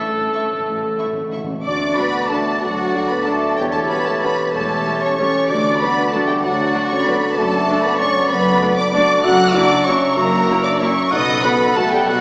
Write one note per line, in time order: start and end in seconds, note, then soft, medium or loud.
0.00 0.65 A2 soft
0.00 1.30 A3 medium
0.00 0.81 C#4 soft
0.00 1.33 A4 medium
0.00 0.32 E5 soft
0.13 0.19 A2 soft
0.13 0.49 C#5 soft
0.20 0.28 A2 soft
0.34 0.44 A2 soft
0.34 0.42 E4 soft
0.34 0.97 E5 soft
0.34 0.42 E5 soft
0.34 0.42 C#6 soft
0.45 0.51 A2 soft
0.50 0.58 A2 soft
0.50 1.14 C#5 soft
0.59 0.66 A2 soft
0.66 0.93 A1 medium
0.66 1.67 A2 soft
0.66 0.93 A2 medium
0.66 0.74 A2 soft
0.75 0.80 A2 soft
0.81 0.88 A2 medium
0.81 1.67 C#4 soft
0.89 0.95 A2 medium
0.97 1.03 A2 medium
0.97 1.07 E4 soft
0.97 1.31 E5 soft
0.97 1.07 E5 soft
0.97 1.07 C#6 soft
1.04 1.12 A2 medium
1.13 1.19 A2 medium
1.13 1.48 C#5 soft
1.21 1.27 A2 medium
1.29 1.35 A2 medium
1.29 1.39 E4 soft
1.29 1.40 E5 soft
1.29 1.67 E5 soft
1.29 1.41 C#6 soft
1.36 1.43 A2 medium
1.44 1.50 A2 medium
1.49 1.59 A2 medium
1.49 1.67 C#5 soft
1.65 1.92 D2 medium
1.65 2.62 D3 medium
1.65 1.96 D4 medium
1.65 2.27 F#4 medium
1.65 1.95 D5 medium
1.65 2.27 D5 medium
1.65 1.95 D6 medium
1.65 2.27 A6 medium
1.82 2.14 D4 soft
1.96 2.05 F#3 soft
1.96 2.78 A3 soft
1.96 2.31 B3 medium
1.96 2.05 D4 medium
1.96 2.30 B4 medium
1.96 2.30 B5 medium
2.15 2.46 D4 soft
2.30 2.39 F#3 medium
2.30 2.63 A3 medium
2.30 2.38 D4 soft
2.30 2.61 F#4 medium
2.30 3.27 F#4 soft
2.30 2.61 A4 medium
2.30 2.60 D5 medium
2.30 2.61 A5 medium
2.30 2.61 A6 medium
2.48 2.94 D4 soft
2.61 2.88 D2 medium
2.61 3.60 D3 medium
2.61 3.11 F#3 medium
2.61 3.10 F#4 medium
2.61 3.25 F#4 medium
2.61 3.25 D5 medium
2.61 3.10 F#5 medium
2.61 3.25 A6 medium
2.79 3.11 A3 soft
2.94 3.02 F#3 medium
2.94 3.02 D4 medium
2.94 3.43 D4 soft
3.09 3.89 A3 soft
3.09 3.26 B3 medium
3.09 3.27 B4 medium
3.09 3.26 B5 medium
3.24 3.35 F#3 soft
3.24 3.58 A3 medium
3.24 3.35 D4 soft
3.24 3.58 A4 medium
3.24 3.59 D5 medium
3.24 3.56 A5 medium
3.24 3.58 A6 medium
3.28 3.62 F#4 medium
3.28 3.60 F#4 soft
3.44 3.60 D4 soft
3.57 3.84 E1 medium
3.57 3.84 E2 medium
3.57 4.54 E3 medium
3.57 3.73 G3 medium
3.57 3.65 G4 medium
3.57 4.54 G4 medium
3.57 4.53 C#5 medium
3.57 3.63 G5 medium
3.61 4.52 A6 medium
3.72 3.89 A3 medium
3.72 4.06 E4 soft
3.72 3.90 A4 medium
3.72 3.79 A5 medium
3.88 3.98 G3 soft
3.88 4.70 A3 soft
3.88 4.06 B3 medium
3.88 3.98 C#4 medium
3.88 4.07 B4 medium
3.88 4.05 B5 medium
4.06 4.23 A3 medium
4.06 4.39 E4 soft
4.06 4.24 A4 medium
4.06 4.22 A5 medium
4.22 4.32 G3 medium
4.22 4.54 B3 medium
4.22 4.31 C#4 soft
4.22 5.18 G4 soft
4.22 4.54 B4 medium
4.22 4.53 B5 medium
4.40 4.85 E4 soft
4.52 4.81 E1 medium
4.52 4.80 E2 medium
4.52 5.51 E3 medium
4.52 5.02 A3 medium
4.52 5.18 G4 medium
4.52 5.03 A4 medium
4.52 5.17 C#5 medium
4.52 5.01 A5 medium
4.52 5.17 A6 medium
4.71 5.01 A3 soft
4.86 4.95 G3 soft
4.86 4.95 C#4 soft
4.86 5.34 E4 soft
5.01 5.81 A3 soft
5.01 5.17 C#4 medium
5.01 5.18 C#5 medium
5.01 5.16 C#6 medium
5.17 5.28 G3 medium
5.17 5.49 C#4 medium
5.17 5.28 C#4 soft
5.17 5.51 G4 soft
5.17 5.51 G4 medium
5.17 5.52 C#5 medium
5.17 5.49 C#5 medium
5.17 5.48 C#6 medium
5.17 5.47 A6 medium
5.35 5.51 E4 soft
5.48 5.75 D2 medium
5.48 5.93 D3 medium
5.48 6.43 D3 medium
5.48 5.81 D4 medium
5.48 6.12 F#4 medium
5.48 6.12 D5 medium
5.48 5.81 D5 medium
5.48 5.80 D6 medium
5.48 6.11 A6 medium
5.65 5.96 D4 soft
5.79 5.91 F#3 medium
5.79 6.57 A3 soft
5.79 6.12 B3 medium
5.79 5.90 D4 soft
5.79 6.14 B4 medium
5.79 6.11 B5 medium
5.97 6.28 D4 soft
6.12 6.22 F#3 medium
6.12 6.29 A3 medium
6.12 6.23 D4 medium
6.12 6.43 F#4 medium
6.12 7.05 F#4 soft
6.12 6.29 A4 medium
6.12 6.43 D5 medium
6.12 6.28 A5 medium
6.12 6.42 A6 medium
6.27 6.44 G3 medium
6.27 6.73 D4 soft
6.27 6.44 G4 medium
6.27 6.33 G5 medium
6.41 6.69 D2 medium
6.41 7.39 D3 medium
6.41 6.91 F#3 medium
6.41 7.36 F#4 medium
6.41 6.90 F#4 medium
6.41 7.35 D5 medium
6.41 6.89 F#5 medium
6.41 7.35 A6 medium
6.58 6.90 A3 soft
6.74 6.82 F#3 medium
6.74 6.82 D4 medium
6.74 7.20 D4 soft
6.88 7.66 A3 soft
6.88 7.07 C#4 medium
6.88 7.07 C#5 medium
6.88 7.05 C#6 medium
7.04 7.15 F#3 medium
7.04 7.37 B3 medium
7.04 7.15 D4 medium
7.04 7.99 F#4 medium
7.04 7.38 B4 medium
7.04 7.36 B5 medium
7.22 9.25 D4 soft
7.35 7.62 F#1 medium
7.35 8.28 F#2 medium
7.35 7.62 F#2 medium
7.35 7.83 A3 medium
7.35 8.63 F#4 medium
7.35 7.83 A4 medium
7.35 8.63 D5 medium
7.35 7.83 A5 medium
7.35 8.71 A6 medium
7.52 7.83 F#3 soft
7.68 8.44 A3 soft
7.68 7.77 A3 medium
7.68 7.77 D4 medium
7.84 8.14 F#3 soft
7.84 8.01 B3 medium
7.84 8.00 B4 medium
7.84 8.00 B5 medium
7.98 8.10 A3 medium
7.98 8.31 C#4 medium
7.98 8.10 D4 medium
7.98 8.92 F#4 medium
7.98 8.30 C#5 medium
7.98 8.30 C#6 medium
8.15 8.59 F#3 soft
8.29 8.56 F#1 medium
8.29 9.23 F#2 medium
8.29 8.56 F#2 medium
8.29 8.78 B3 medium
8.29 8.77 B4 medium
8.29 8.77 B5 medium
8.45 8.76 A3 medium
8.61 9.08 F#3 medium
8.61 8.70 A3 medium
8.61 8.70 D4 medium
8.77 9.25 A3 medium
8.77 8.92 D4 medium
8.77 8.94 D5 medium
8.77 8.90 D6 loud
8.92 9.02 A3 medium
8.92 9.23 D4 medium
8.92 9.02 D4 medium
8.92 9.21 F#4 medium
8.92 9.85 F#4 medium
8.92 9.25 D5 medium
8.92 9.24 D5 medium
8.92 9.22 D6 loud
8.92 9.23 A6 medium
9.09 11.27 F#3 medium
9.22 9.49 F#1 medium
9.22 10.16 F#2 medium
9.22 9.49 F#2 medium
9.22 9.54 F#4 medium
9.22 9.85 F#4 medium
9.22 9.86 E5 medium
9.22 9.54 F#5 medium
9.22 9.84 A#5 medium
9.22 9.54 F#6 loud
9.38 9.69 C#3 medium
9.53 10.32 A#3 medium
9.53 9.64 A#3 medium
9.53 9.86 D4 medium
9.53 9.64 E4 medium
9.53 9.87 D5 medium
9.53 9.86 D6 loud
9.70 10.01 C#3 medium
9.85 9.96 A#3 medium
9.85 10.17 C#4 medium
9.85 9.96 E4 medium
9.85 10.81 F#4 medium
9.85 10.16 F#4 medium
9.85 10.17 C#5 medium
9.85 10.15 E5 medium
9.85 10.16 A#5 medium
9.85 10.17 C#6 medium
10.02 10.48 C#3 medium
10.16 10.43 F#1 medium
10.16 11.14 F#2 medium
10.16 10.43 F#2 medium
10.16 10.51 A#3 medium
10.16 10.79 F#4 medium
10.16 10.63 A#4 medium
10.16 10.79 E5 medium
10.16 10.64 A#5 medium
10.16 10.80 A#5 medium
10.33 10.63 A#3 medium
10.49 10.97 C#3 medium
10.49 10.57 A#3 medium
10.49 10.58 E4 medium
10.64 10.81 D4 medium
10.64 10.81 D5 medium
10.64 10.70 D6 medium
10.80 10.89 A#3 medium
10.80 11.13 C#4 medium
10.80 10.89 E4 medium
10.80 11.12 F#4 medium
10.80 11.76 F#4 medium
10.80 11.12 C#5 medium
10.80 11.13 E5 medium
10.80 11.12 A#5 medium
10.80 11.12 C#6 medium
10.98 11.14 C#3 medium
11.11 11.38 B1 medium
11.11 11.38 B2 medium
11.11 12.08 B2 medium
11.11 11.43 D#4 medium
11.11 11.43 A4 medium
11.11 11.43 D#5 medium
11.11 11.43 F#5 medium
11.11 11.43 B5 medium
11.11 11.44 D#6 loud
11.28 11.60 F#3 medium
11.43 11.52 A3 medium
11.43 12.21 A3 medium
11.43 11.77 B3 medium
11.43 11.52 F#4 medium
11.43 11.76 A4 medium
11.43 11.76 B4 medium
11.43 11.76 F#5 medium
11.43 11.75 B5 medium
11.43 11.77 B5 medium
11.62 11.92 F#3 medium
11.76 11.85 A3 medium
11.76 11.93 A3 medium
11.76 11.84 F#4 medium
11.76 12.21 F#4 medium
11.76 11.92 A4 medium
11.76 12.07 A4 medium
11.76 12.07 F#5 medium
11.76 11.92 A5 medium
11.76 12.07 B5 medium
11.92 12.21 F#3 medium
11.92 12.00 G3 medium
11.92 12.07 G4 medium
11.92 12.08 G5 medium
12.06 12.21 B1 medium
12.06 12.21 B2 medium
12.06 12.21 F#3 medium
12.06 12.21 F#4 medium
12.06 12.21 A4 medium
12.06 12.21 F#5 medium
12.06 12.21 B5 medium